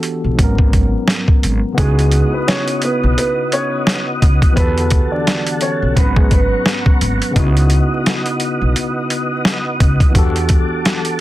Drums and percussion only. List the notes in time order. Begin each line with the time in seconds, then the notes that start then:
0.03 closed hi-hat
0.39 kick, closed hi-hat
0.58 kick
0.73 kick, closed hi-hat
1.08 snare, closed hi-hat
1.28 kick
1.43 closed hi-hat
1.78 kick, closed hi-hat
1.99 closed hi-hat
2.11 closed hi-hat
2.48 snare, closed hi-hat
2.68 closed hi-hat
2.82 closed hi-hat
3.18 closed hi-hat
3.52 closed hi-hat
3.87 snare, closed hi-hat
4.22 kick, closed hi-hat
4.42 kick, closed hi-hat
4.57 kick, closed hi-hat
4.78 closed hi-hat
4.90 kick, closed hi-hat
5.27 snare, closed hi-hat
5.46 closed hi-hat
5.61 closed hi-hat
5.97 kick, closed hi-hat
6.16 kick
6.31 kick, closed hi-hat
6.66 snare, closed hi-hat
6.86 kick
7.01 closed hi-hat
7.22 closed hi-hat
7.36 kick, closed hi-hat
7.57 closed hi-hat
7.70 closed hi-hat
8.06 snare, closed hi-hat
8.26 closed hi-hat
8.40 closed hi-hat
8.76 closed hi-hat
9.10 closed hi-hat
9.45 snare, closed hi-hat
9.80 kick, closed hi-hat
10.00 kick, closed hi-hat
10.15 kick, closed hi-hat
10.36 closed hi-hat
10.49 kick, closed hi-hat
10.85 snare, closed hi-hat
11.05 closed hi-hat